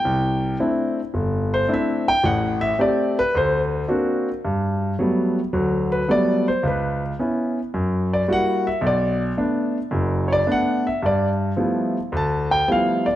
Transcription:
X:1
M:4/4
L:1/8
Q:"Swing" 1/4=109
K:G
V:1 name="Grand piano"
g2 z3 c e g | f e d B c z3 | z4 z B d c | B z4 d f e |
d z4 [^cd] f e | d z3 a g =f d |]
V:2 name="Grand piano"
C,,2 [A,CDE] z G,,,2 [A,CDE] z | [A,,,A,,]2 [A,CG] z D,,2 [^A,CDF] z | G,,2 [F,G,A,B,] z [D,,F,]2 [F,G,A,B,] z | ^C,,2 [B,^CE] z F,,2 [G,^A,EF] z |
B,,,2 [A,B,D] z [F,,,F,,]2 [A,B,D] z | G,,2 [=F,G,A,B,E] z D,,2 [F,G,A,B,E] z |]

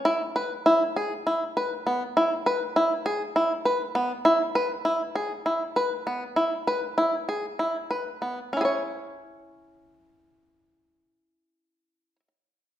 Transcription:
X:1
M:7/8
L:1/8
Q:1/4=99
K:E
V:1 name="Five-string banjo"
E B E G E B B, | E B E G E B B, | E B E G E B B, | E B E G E B B, |
[CEGc]6- [CEGc]- | [CEGc]6- [CEGc] |]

